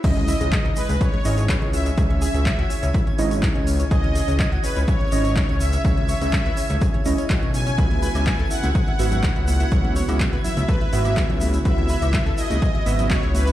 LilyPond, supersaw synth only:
\new Staff \with { instrumentName = "Supersaw synth" } { \time 4/4 \key cis \minor \tempo 4 = 124 dis''4. b'8 cis''4. e''8 | e''2. r4 | dis''4. b'8 cis''4. e''8 | r2. r8 gis''8 |
gis''4. fis''8 fis''4. fis''8~ | fis''4 r8 e''8 b'8 e''4 r8 | e''4. dis''4. cis''8 b'8 | }